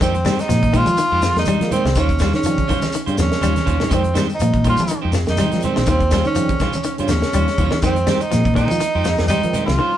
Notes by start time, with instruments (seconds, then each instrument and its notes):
0.01 fingered electric bass F2, tine electric piano D#3 G3 G#3 C4, clean electric guitar D#3 G#3 D#4 G4 C5, tenor saxophone C4, kick, closed hi-hat, shekere
0.14 muted clean electric guitar stroke, closed hi-hat
0.25 tine electric piano D#3 G3 G#3 C4, clean electric guitar G3 G#3 D#4 G4 C5, snare, closed hi-hat, high conga, shekere
0.39 tenor saxophone D#4, muted clean electric guitar stroke, snare, closed hi-hat, shekere
0.49 fingered electric bass A#2, tine electric piano D#3 G3 G#3 C4, clean electric guitar F3, snare, closed hi-hat, shekere
0.62 muted clean electric guitar stroke, kick, closed hi-hat, high conga
0.73 clean electric guitar D#3 G#3 D#4 G4 C5, tine electric piano D#3 G3 G#3 C4, kick, closed hi-hat, low conga, shekere
0.77 tenor saxophone F4
0.86 fingered electric bass F3, muted clean electric guitar stroke, high conga, shekere
0.97 clean electric guitar D#3, muted clean electric guitar stroke, closed hi-hat, high conga, shekere
1.12 fingered electric bass F2, clean electric guitar G#3 D#4 G4 C5
1.22 clean electric guitar F3, muted clean electric guitar stroke, snare, closed hi-hat, shekere
1.35 fingered electric bass F2, tine electric piano D#3 G3 G#3 A#3, tenor saxophone D#4, snare, closed hi-hat, shekere
1.45 clean electric guitar G3 G#3 D#4 C5, muted clean electric guitar stroke, closed hi-hat, high conga, low conga, shekere
1.61 tine electric piano D#3 G3 G#3 A#3, fingered electric bass F3, muted clean electric guitar stroke, snare, closed hi-hat
1.71 clean electric guitar G#3 D#4 G4 C5, tenor saxophone C4, muted fingered electric bass stroke, closed hi-hat, low conga, shekere
1.84 fingered electric bass C2, muted clean electric guitar stroke, snare
1.95 fingered electric bass D#2, clean electric guitar D#3 G3 F4 C5, tenor saxophone C#4, muted clean electric guitar stroke, kick, closed hi-hat, high conga, shekere
2.09 muted clean electric guitar stroke, kick, closed hi-hat
2.19 clean electric guitar G3 C#4 F4 C5, kick, snare, closed hi-hat, high conga, shekere
2.33 fingered electric bass D#3, tenor saxophone C#4, muted clean electric guitar stroke, snare, shekere
2.43 tine electric piano C#3 F3 G3 C4, clean electric guitar F3, closed hi-hat, shekere
2.58 muted clean electric guitar stroke, kick, closed hi-hat, high conga
2.68 clean electric guitar D#3 G3 C#4 F4 C5, kick, closed hi-hat, low conga, shekere
2.81 muted clean electric guitar stroke, snare, high conga, shekere
2.92 clean electric guitar D#3, muted clean electric guitar stroke, closed hi-hat, high conga, shekere
3.06 fingered electric bass G2, tine electric piano C#3 F3 G3 C4, clean electric guitar G3 C#4 F4 C5, closed hi-hat
3.17 fingered electric bass D#2, clean electric guitar F3, muted clean electric guitar stroke, snare, closed hi-hat, shekere
3.22 tenor saxophone C#4
3.32 snare, closed hi-hat, shekere
3.41 fingered electric bass D#2, clean electric guitar G3 C#4 F4 C5, closed hi-hat, high conga, low conga, shekere
3.55 muted clean electric guitar stroke, snare, closed hi-hat, high conga
3.65 fingered electric bass D#2, clean electric guitar G3 C#4 F4 C5, kick, closed hi-hat, high conga, shekere
3.79 clean electric guitar D#3, muted clean electric guitar stroke, snare, low conga
3.89 fingered electric bass F2, tine electric piano D#3 G3 G#3 C4, clean electric guitar D#3 G#3 D#4 G4 C5, kick, closed hi-hat, high conga, shekere
3.94 tenor saxophone C4
4.04 muted clean electric guitar stroke, closed hi-hat
4.14 tine electric piano D#3 G3 G#3 A#3, clean electric guitar G3 G#3 D#4 G4 C5, snare, closed hi-hat, high conga, shekere
4.29 muted clean electric guitar stroke, closed hi-hat, shekere
4.35 tenor saxophone D#4
4.39 fingered electric bass A#2, tine electric piano D#3 G3 G#3 C4, clean electric guitar F3, closed hi-hat, shekere
4.53 muted clean electric guitar stroke, kick, closed hi-hat, high conga
4.64 tine electric piano D#3 G3 G#3 A#3, clean electric guitar D#3 D#4 G4 C5, kick, closed hi-hat, low conga, shekere
4.69 tenor saxophone F4
4.77 fingered electric bass F3, muted clean electric guitar stroke, high conga, shekere
4.88 clean electric guitar D#3, muted clean electric guitar stroke, closed hi-hat, high conga, shekere
5.02 fingered electric bass F2, clean electric guitar G#3 D#4 G4 C5
5.12 clean electric guitar F3, muted clean electric guitar stroke, snare, closed hi-hat, shekere
5.26 fingered electric bass F2, tine electric piano D#3 G3 G#3 A#3, tenor saxophone D#4, snare, closed hi-hat, shekere
5.37 clean electric guitar G3 G#3 D#4 G4 C5, snare, closed hi-hat, high conga, low conga, shekere
5.51 tine electric piano D#3 G3 G#3 C4, fingered electric bass F3, muted clean electric guitar stroke, snare, closed hi-hat
5.60 clean electric guitar G#3 D#4 G4, closed hi-hat, low conga, shekere
5.64 tenor saxophone C4, clean electric guitar C5, muted fingered electric bass stroke
5.76 fingered electric bass A#1, clean electric guitar D#3, muted clean electric guitar stroke, snare
5.86 fingered electric bass D#2, clean electric guitar D#3 G3 C#4 F4 C5, kick, closed hi-hat, shekere
5.90 tenor saxophone C4, high conga
6.00 muted clean electric guitar stroke, kick, closed hi-hat
6.11 clean electric guitar G3 C#4 F4 C5, kick, snare, closed hi-hat, high conga, shekere
6.25 fingered electric bass D#3, tenor saxophone C#4, muted clean electric guitar stroke, shekere
6.35 tine electric piano C#3 F3 G3 C4, clean electric guitar F3, closed hi-hat, high conga, shekere
6.49 muted clean electric guitar stroke, kick, closed hi-hat, high conga
6.59 clean electric guitar D#3 G3 C#4 F4 C5, kick, snare, closed hi-hat, low conga, shekere
6.73 muted clean electric guitar stroke, high conga, shekere
6.83 clean electric guitar D#3, muted clean electric guitar stroke, closed hi-hat, shekere
6.98 fingered electric bass G2, tine electric piano C#3 F3 G3 C#4, clean electric guitar G3 C#4 F4 C5, closed hi-hat
7.08 fingered electric bass D#2, clean electric guitar F3, tenor saxophone C#4, muted clean electric guitar stroke, snare, closed hi-hat, shekere
7.22 snare, closed hi-hat, shekere
7.33 fingered electric bass D#2, clean electric guitar G3 C#4 F4 C5, closed hi-hat, high conga, low conga, shekere
7.48 muted clean electric guitar stroke, snare, closed hi-hat
7.57 fingered electric bass D#2, clean electric guitar G3 C#4 F4 C5, kick, closed hi-hat, high conga, low conga, shekere
7.71 clean electric guitar D#3, muted clean electric guitar stroke, muted fingered electric bass stroke, snare, high conga
7.82 fingered electric bass F2, tine electric piano D#3 G3 G#3 C4, clean electric guitar D#3 G#3 D#4 G4 C5, kick, closed hi-hat, shekere
7.86 tenor saxophone C4
7.96 muted clean electric guitar stroke, closed hi-hat
8.07 tine electric piano D#3 G3 G#3 C4, clean electric guitar G3 D#4 G4 C5, snare, closed hi-hat, high conga, shekere
8.21 tenor saxophone D#4, muted clean electric guitar stroke, closed hi-hat, shekere
8.31 fingered electric bass A#2, tine electric piano D#3 G3 G#3 C4, clean electric guitar F3, snare, closed hi-hat, high conga, shekere
8.44 muted clean electric guitar stroke, kick, closed hi-hat, high conga
8.54 clean electric guitar D#3 G#3 D#4 G4 C5, tine electric piano D#3 G3 G#3, tenor saxophone D#4, kick, closed hi-hat, low conga, shekere
8.58 tine electric piano D#4
8.68 fingered electric bass F3, muted clean electric guitar stroke, high conga, shekere
8.79 clean electric guitar D#3, muted clean electric guitar stroke, closed hi-hat, high conga, shekere
8.95 fingered electric bass F2, clean electric guitar G#3 D#4 G4 C5
9.04 clean electric guitar F3, snare, closed hi-hat, shekere
9.18 fingered electric bass F2, tine electric piano D#3 G3 G#3 C4, snare, closed hi-hat, shekere
9.28 clean electric guitar G3 G#3 G4 C5, tenor saxophone D#4, closed hi-hat, high conga, low conga, shekere
9.43 tine electric piano D#3 G3 G#3 C4, fingered electric bass F3, closed hi-hat
9.53 clean electric guitar G#3 D#4 G4 C5, muted fingered electric bass stroke, closed hi-hat, low conga, shekere
9.66 fingered electric bass C2, clean electric guitar F3, tenor saxophone F4, muted clean electric guitar stroke, snare
9.79 clean electric guitar D#3 G3 C#4 F4 C5
9.93 muted clean electric guitar stroke